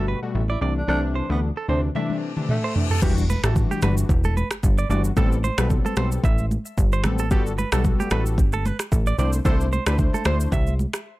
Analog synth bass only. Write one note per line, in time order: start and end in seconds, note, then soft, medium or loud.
0.00 0.15 G1 loud
0.35 0.57 A1 medium
0.61 0.83 C2 loud
0.88 1.22 C2 loud
1.30 1.52 D2 medium
1.69 1.90 D2 medium
3.02 3.36 E1 loud
3.44 3.66 A1 medium
3.83 4.05 G1 medium
4.09 4.43 E1 loud
4.63 4.85 G1 medium
4.90 5.12 G1 loud
5.17 5.51 A1 loud
5.58 5.80 B1 medium
5.97 6.19 B1 medium
6.24 6.58 A1 loud
6.78 7.06 G1 loud
7.04 7.32 A1 medium
7.31 7.65 G1 loud
7.72 7.94 B1 medium
8.11 8.39 A1 loud
8.38 8.72 G1 loud
8.92 9.14 A1 medium
9.19 9.40 C2 loud
9.45 9.79 C2 loud
9.87 10.09 D2 medium
10.26 10.47 D2 medium
10.52 10.86 C2 loud